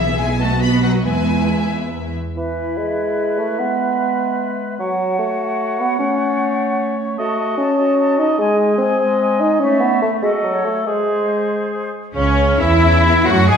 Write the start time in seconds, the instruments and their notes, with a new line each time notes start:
Already playing: double bass section B1, cello section E3, viola section B3 E4, violin section G#4 E5
0.19 cello section G#3, violin section G#5
0.41 cello section A3, viola section F#4, violin section B4 D#5 A5
0.62 cello section B3, violin section B5
0.83 cello section F#3, violin section F#5
1.05 double bass section E2, cello section G#3, viola section E4, violin section E5 G#5
2.35 bassoon E3, clarinet E4, cor anglais B4, flute E5
2.78 bassoon G#3
3.38 bassoon A3
3.59 clarinet G#3, bassoon B3
4.79 bassoon F#3, clarinet F#4, cor anglais C#5, flute F#5
5.19 bassoon A3
5.79 bassoon B3
5.99 clarinet A3, bassoon C#4
7.17 bassoon A3, clarinet F#4, cor anglais D#5, flute A5
7.38 cor anglais D#5, flute A5
7.57 bassoon C#4, cor anglais D#5, flute A5
7.78 clarinet F#4, cor anglais D#5, flute A5
7.98 cor anglais D#5, flute A5
8.19 bassoon D#4, cor anglais D#5, flute A5
8.38 bassoon G#3, clarinet G#3, cor anglais D#5, flute G#5
8.60 cor anglais D#5, flute G#5
8.78 bassoon C4, cor anglais D#5, flute G#5
9.00 clarinet G#3, cor anglais D#5, flute G#5
9.21 cor anglais D#5, flute G#5
9.40 bassoon D#4, cor anglais D#5, flute G#5
9.60 clarinet A3, bassoon C#4, cor anglais C#5, flute E5
9.81 bassoon B3
10.02 bassoon A3
10.22 bassoon G#3, clarinet F#4, cor anglais A4, flute D#5
10.43 bassoon F#3
10.54 flute C#5
10.64 bassoon A3
10.86 bassoon G#3, clarinet G#3, cor anglais G#4, flute C5
12.15 double bass section C#2, bassoon C#3, cello section C#4, violin section C#4 C#5, cor anglais C#4, viola section C#4, clarinet C#4, flute C#5
12.59 double bass section E2, bassoon E3, viola section E4, violin section E4 E5, cello section E4, clarinet E4, cor anglais E4, flute E5
12.83 french horn section C#4
13.04 french horn section B3
13.26 double bass section F#2, bassoon F#3, french horn section A3, cor anglais F#4, viola section F#4, violin section F#4 F#5, cello section F#4, clarinet F#4, flute F#5
13.48 double bass section G#2, french horn section G#3, bassoon G#3, cor anglais G#4, violin section G#4 G#5, cello section G#4, viola section G#4, clarinet G#4, flute G#5